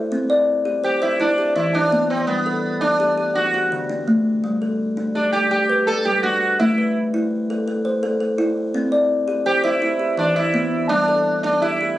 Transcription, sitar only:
0.84 1.01 G4 medium
1.02 1.20 E4 medium
1.20 1.54 D4 medium
1.55 1.74 E4 medium
1.75 2.10 D4 medium
2.10 2.18 C4 medium
2.20 2.27 C4 medium
2.27 2.77 B3 medium
2.81 3.37 D4 medium
3.35 3.73 F#4 medium
5.15 5.32 D4 medium
5.33 5.50 G4 medium
5.51 5.88 G4 medium
5.87 6.04 A4 medium
6.05 6.22 G4 medium
6.23 6.56 F#4 medium
6.60 6.97 E4 medium
9.46 9.64 G4 medium
9.64 10.14 E4 medium
10.19 10.36 D4 medium
10.36 10.86 E4 medium
10.89 11.42 D4 medium
11.43 11.62 D4 medium
11.62 11.97 E4 medium

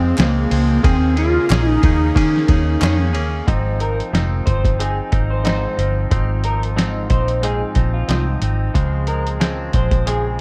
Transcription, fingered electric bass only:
0.00 0.12 F2 loud
0.18 0.45 C#2 loud
0.51 0.78 C#2 medium
0.84 1.37 D#2 medium
1.50 1.76 A#1 medium
1.83 2.10 D#2 medium
2.16 2.42 D#3 loud
2.49 2.75 D#2 loud
2.82 3.14 F2 medium
3.14 3.41 D#2 medium
3.48 4.00 G#1 medium
4.13 4.40 F1 medium
4.47 5.00 G1 medium
5.13 5.65 G#1 medium
5.78 6.05 G1 medium
6.12 7.06 G#1 medium
7.10 7.63 A#1 medium
7.76 8.02 A#1 medium
8.09 8.35 C2 medium
8.42 8.68 G#1 medium
8.75 9.70 C#2 medium
9.74 10.39 A#1 medium

